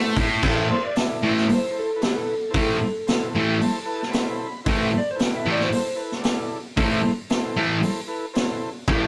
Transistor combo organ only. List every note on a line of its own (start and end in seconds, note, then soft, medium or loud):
0.00 0.26 E4 medium
0.00 0.27 A4 medium
0.00 0.26 C5 loud
0.43 0.79 E4 loud
0.43 0.79 A4 loud
0.43 0.79 C5 loud
0.96 1.32 E4 medium
0.96 1.32 A4 medium
0.96 1.31 D5 medium
1.47 1.66 E4 medium
1.47 1.66 A4 medium
1.47 1.66 C5 medium
1.70 1.91 E4 medium
1.70 1.91 A4 medium
1.70 1.91 C5 medium
1.96 2.34 E4 medium
1.96 2.34 A4 medium
1.96 2.34 B4 medium
2.50 2.88 E4 medium
2.50 2.88 A4 medium
2.50 2.88 C5 loud
3.07 3.44 E4 medium
3.07 3.43 A4 medium
3.07 3.42 C5 medium
3.37 3.48 E5 medium
3.45 3.58 G5 medium
3.61 3.79 E4 medium
3.61 3.78 A4 medium
3.61 3.79 C5 medium
3.61 4.10 A5 medium
3.85 4.04 E4 medium
3.85 4.04 A4 medium
3.85 4.04 B4 medium
4.10 4.48 E4 medium
4.10 4.48 A4 medium
4.10 4.48 C5 loud
4.10 4.61 B5 medium
4.64 5.00 E4 medium
4.64 5.01 A4 medium
4.64 5.01 C5 medium
5.15 5.53 E4 medium
5.15 5.52 A4 medium
5.15 5.52 B4 medium
5.69 5.88 E4 medium
5.69 5.88 A4 medium
5.69 5.88 C5 medium
5.95 6.14 E4 medium
5.95 6.15 A4 medium
5.95 6.14 B4 medium
6.21 6.58 E4 medium
6.21 6.58 A4 medium
6.21 6.58 D5 medium
6.76 7.12 E4 loud
6.76 7.12 A4 loud
6.76 7.12 C5 loud
7.30 7.65 E4 medium
7.30 7.66 A4 medium
7.30 7.66 C5 loud
7.83 8.00 E4 medium
7.83 8.00 A4 medium
7.83 8.01 C5 medium
8.07 8.25 E4 medium
8.07 8.26 A4 medium
8.07 8.26 B4 medium
8.34 8.70 E4 medium
8.34 8.70 A4 medium
8.34 8.69 C5 medium
8.88 9.07 E4 medium
8.88 9.07 A4 medium
8.88 9.07 D5 medium